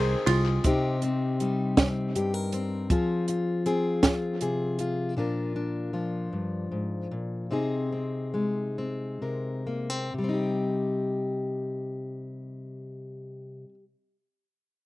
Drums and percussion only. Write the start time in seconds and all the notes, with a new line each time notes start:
0.27 clap, ride
0.46 clap
0.64 kick, closed hi-hat
1.02 closed hi-hat
1.40 closed hi-hat
1.77 kick, snare, closed hi-hat
2.16 closed hi-hat
2.52 closed hi-hat
2.90 kick, closed hi-hat
3.28 closed hi-hat
3.66 closed hi-hat
4.03 kick, snare, closed hi-hat
4.41 closed hi-hat
4.79 closed hi-hat